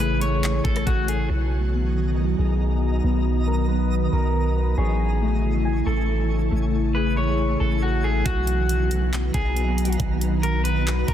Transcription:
Already playing: 808-style bass A1, ambient pad C#3 E3 A3 E4, harp A3 G#5, synth texture A3 C#5 G#5
0.00 harp G#4, clean electric guitar B4
0.21 harp A3, clean electric guitar C#5, closed hi-hat
0.43 clap, closed hi-hat
0.64 808-style bass A1, clean electric guitar A4, kick, closed hi-hat
0.76 cross-stick, closed hi-hat
0.87 808-style bass A1, clean electric guitar F#4, kick, closed hi-hat
1.08 clean electric guitar G#4, harp A4, closed hi-hat
1.30 808-style bass B1, ambient pad D#3 F#3 B3 F#4, clean electric guitar F#4, synth texture D#5 A#5 D#6
1.73 harp B3
2.17 harp A#4
2.39 808-style bass B1, clean electric guitar G#4
3.04 808-style bass B1, harp B3
3.48 clean electric guitar A#4, harp A#5
3.68 harp B3, clean electric guitar B4
4.13 808-style bass B1, clean electric guitar A#4
4.57 harp B4
4.78 808-style bass A1, ambient pad C#3 E3 A3 E4, synth texture A3 G#5 C#6, clean electric guitar G#4, harp C#5
5.21 harp A3
5.65 harp G#5
5.87 808-style bass A1, clean electric guitar A4
6.51 808-style bass A1, harp A3
6.95 harp G#4, clean electric guitar B4
7.16 harp A3, clean electric guitar C#5
7.60 808-style bass A1, clean electric guitar A4
7.82 clean electric guitar F#4
8.04 clean electric guitar G#4, harp A4
8.25 808-style bass B1, ambient pad D#3 F#3 B3 F#4, synth texture B3 D#4 A#5, clean electric guitar F#4, kick, closed hi-hat
8.47 closed hi-hat
8.69 closed hi-hat
8.91 closed hi-hat
9.13 clap, closed hi-hat
9.34 808-style bass B1, clean electric guitar G#4, kick, closed hi-hat
9.57 closed hi-hat
9.78 closed hi-hat
9.85 closed hi-hat
9.92 closed hi-hat
10.00 808-style bass B1, kick, closed hi-hat
10.21 closed hi-hat
10.43 clean electric guitar A#4, closed hi-hat
10.64 clean electric guitar B4, closed hi-hat
10.87 clap, closed hi-hat
11.08 808-style bass B1, clean electric guitar A#4, kick, closed hi-hat

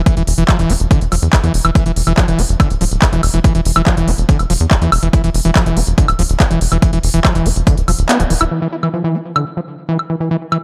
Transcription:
0.06 acid bass E3, kick, closed hi-hat
0.17 analog synth bass E1, acid bass E3, closed hi-hat
0.27 analog synth bass E1, open hi-hat
0.38 analog synth bass E1, acid bass E3, closed hi-hat
0.49 acid bass F3, kick, clap, closed hi-hat, high woodblock
0.59 analog synth bass E1, acid bass E3, closed hi-hat
0.70 analog synth bass E1, acid bass E4, open hi-hat
0.80 analog synth bass E1, closed hi-hat
0.91 acid bass D3, kick, closed hi-hat
1.01 analog synth bass E1, closed hi-hat
1.12 analog synth bass E1, acid bass F3, open hi-hat, high woodblock
1.22 analog synth bass E2, closed hi-hat
1.33 kick, clap, closed hi-hat
1.44 analog synth bass E2, acid bass E3, closed hi-hat
1.54 analog synth bass E1, open hi-hat
1.65 analog synth bass E1, acid bass E3, closed hi-hat, high woodblock
1.75 acid bass E3, kick, closed hi-hat
1.86 analog synth bass E1, acid bass E3, closed hi-hat
1.96 analog synth bass E1, open hi-hat
2.07 analog synth bass E1, acid bass E3, closed hi-hat, high woodblock
2.18 acid bass F3, kick, clap, closed hi-hat
2.28 analog synth bass E1, acid bass E3, closed hi-hat
2.39 analog synth bass E1, acid bass E4, open hi-hat
2.49 analog synth bass E1, closed hi-hat
2.60 acid bass D3, kick, closed hi-hat, high woodblock
2.70 analog synth bass D1, closed hi-hat
2.81 analog synth bass D1, acid bass F3, open hi-hat
2.91 analog synth bass D1, closed hi-hat
3.02 kick, clap, closed hi-hat
3.13 analog synth bass E1, acid bass E3, closed hi-hat
3.23 analog synth bass E1, open hi-hat, high woodblock
3.34 analog synth bass E1, acid bass E3, closed hi-hat
3.44 acid bass E3, kick, closed hi-hat
3.55 analog synth bass E1, acid bass E3, closed hi-hat
3.65 analog synth bass E1, open hi-hat
3.76 analog synth bass E1, acid bass E3, closed hi-hat, high woodblock
3.87 acid bass F3, kick, clap, closed hi-hat
3.97 analog synth bass E1, acid bass E3, closed hi-hat
4.08 analog synth bass E1, acid bass E4, open hi-hat
4.18 analog synth bass E1, closed hi-hat
4.29 acid bass D3, kick, closed hi-hat
4.39 analog synth bass E1, closed hi-hat, high woodblock
4.50 analog synth bass E1, acid bass F3, open hi-hat
4.60 analog synth bass E2, closed hi-hat
4.71 kick, clap, closed hi-hat
4.82 analog synth bass E2, acid bass E3, closed hi-hat
4.92 analog synth bass E1, open hi-hat, high woodblock
5.03 analog synth bass E1, acid bass E3, closed hi-hat
5.13 acid bass E3, kick, closed hi-hat
5.24 analog synth bass E1, acid bass E3, closed hi-hat
5.34 analog synth bass E1, open hi-hat
5.45 analog synth bass E1, acid bass E3, closed hi-hat
5.56 acid bass F3, kick, clap, closed hi-hat, high woodblock
5.66 analog synth bass E1, acid bass E3, closed hi-hat
5.77 analog synth bass E1, acid bass E4, open hi-hat
5.87 analog synth bass E1, closed hi-hat
5.98 acid bass D3, kick, closed hi-hat
6.08 analog synth bass D1, closed hi-hat, high woodblock
6.19 analog synth bass D1, acid bass F3, open hi-hat
6.30 analog synth bass D1, closed hi-hat
6.40 kick, clap, closed hi-hat
6.51 analog synth bass E1, acid bass E3, closed hi-hat
6.61 analog synth bass E1, open hi-hat
6.72 analog synth bass E1, acid bass E3, closed hi-hat, high woodblock
6.82 acid bass E3, kick, closed hi-hat
6.93 analog synth bass E1, acid bass E3, closed hi-hat
7.03 analog synth bass E1, open hi-hat
7.14 analog synth bass E1, acid bass E3, closed hi-hat
7.25 acid bass F3, kick, clap, closed hi-hat, high woodblock
7.35 analog synth bass E1, acid bass E3, closed hi-hat
7.46 analog synth bass E1, acid bass E4, open hi-hat
7.56 analog synth bass E1, closed hi-hat
7.67 acid bass D3, kick, closed hi-hat
7.77 analog synth bass D1, closed hi-hat
7.88 analog synth bass E1, acid bass F3, open hi-hat, high woodblock
7.99 analog synth bass D1, closed hi-hat
8.09 acid bass B3, clap, closed hi-hat
8.20 analog synth bass D1, acid bass F3, closed hi-hat
8.30 analog synth bass D1, acid bass E3, open hi-hat
8.41 analog synth bass D1, acid bass E4, closed hi-hat, high woodblock
8.51 acid bass E3
8.62 acid bass E3
8.83 acid bass E3, high woodblock
8.94 acid bass F3
9.04 acid bass E3
9.15 acid bass E4
9.36 acid bass D3, high woodblock
9.57 acid bass F3
9.89 acid bass E3
9.99 high woodblock
10.10 acid bass E3
10.20 acid bass E3
10.31 acid bass E3
10.52 acid bass E3, high woodblock

